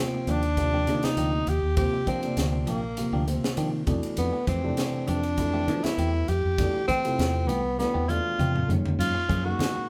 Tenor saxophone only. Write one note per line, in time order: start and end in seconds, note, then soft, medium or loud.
0.00 0.32 C4 medium
0.30 1.06 D4 loud
1.04 1.50 D#4 medium
1.49 1.77 G4 medium
1.77 2.05 G4 medium
2.08 2.61 C4 medium
2.61 2.71 C4 medium
2.70 3.29 A#3 medium
4.18 4.46 B3 medium
4.48 5.09 C4 medium
5.08 5.85 D4 loud
5.84 6.30 E4 medium
6.29 6.87 G4 medium
6.88 7.50 C4 loud
7.48 7.78 B3 medium
7.79 8.11 B3 medium
8.09 8.72 F4 loud
8.99 9.46 F4 medium
9.45 9.89 F#4 medium